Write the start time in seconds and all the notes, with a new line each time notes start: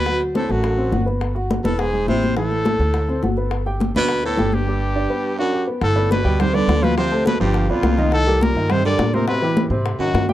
Already playing: D2 B2 B4
0.06 F#3 F#4, high bongo, high conga
0.21 high bongo, high conga
0.34 A2 C4 A4 C5, high bongo, high conga
0.49 A1 F#2 A3 F#4 A4, high bongo, high conga
0.64 high bongo, high conga
0.77 C4 C5, high conga
0.92 G1 F#4 F#5, high bongo, low bongo, high conga
1.06 B3 B4, high bongo, high conga
1.21 high bongo, high conga
1.35 F#4 F#5, high bongo, high conga
1.51 high bongo, high conga
1.64 E1 A2 B3 A4 B4, high bongo, high conga
1.79 G#2 G#4, high bongo, high conga
1.93 G#3 G#4, high conga
2.07 A1 C3 E4 C5 E5, high bongo, low bongo, high conga
2.22 high bongo, high conga
2.37 A2 E3 E4 A4, high bongo, high conga
2.51 high bongo, high conga
2.65 A3 A4, high bongo, high conga
2.79 D2 A3 A4, high bongo, high conga
2.94 high bongo, high conga
3.09 C4 C5, high conga
3.23 G1 F#4 F#5, high bongo, low bongo, high conga
3.37 B3 B4, high bongo, high conga
3.51 high bongo, high conga
3.66 G4 G5, high bongo, high conga
3.80 high bongo, high conga
3.95 D2 B2 D4 B4 D5, high bongo, high conga
4.08 high bongo, high conga
4.24 A2 B3 A4 B4, high conga
4.37 G1 G4 G5, high bongo, low bongo, high conga
4.52 G2 G4, high bongo, high conga
4.67 G3 G4
4.95 D4 D5
5.10 B3 B4
5.39 F#2 D4 F#4 D5
5.53 G4 G5
5.67 B3 B4
5.81 G1 A2 A4, high bongo, high conga
5.96 B3 B4 D5, high conga
6.11 B2 B4, high bongo, high conga
6.24 D2 G3 G4 G5, high conga
6.40 C3 C5, high bongo, high conga, low conga
6.54 D3 B3 B4 D5, high conga, low conga
6.68 D2, high bongo, low bongo, high conga
6.82 B2 F3 F4 B4 F5, high conga
6.97 C3 F3 F4 C5 F5, high bongo, high conga
7.11 A3 A4 C5, high bongo, high conga
7.26 B2 B4, high bongo, high conga
7.40 G1 G2 F3 F4 G4 F5, high conga
7.54 high bongo, high conga
7.69 B1 F2 B3 F4 B4 D5, high bongo, high conga
7.83 C2, high bongo, low bongo, high conga
7.98 D#3 D#4 D#5, high bongo, high conga
8.12 A2 A4, high bongo, high conga
8.27 G3 G4 A#4, high conga
8.41 A#2 A#4, high bongo, high conga
8.55 G2 D#3 D#4 D#5, high conga
8.70 C3 C5, high bongo, high conga, low conga
8.84 D3 G3 G4 A#4 D5, high conga, low conga
8.99 A2, high bongo, low bongo, high conga
9.14 A#2 C3 C4 A#4 C5, high conga
9.28 B2 C3 C4 B4 C5, high bongo
9.42 E3 E4 G4, high bongo, high conga
9.57 high bongo, high conga
9.70 G#2 C3 C4 C5, high conga
9.86 high bongo, high conga
9.99 F#2 G#2 D#3 D#4 F#4, high bongo, high conga
10.14 G2, high bongo, low bongo, high conga
10.29 G3 G4 G5, high bongo, high conga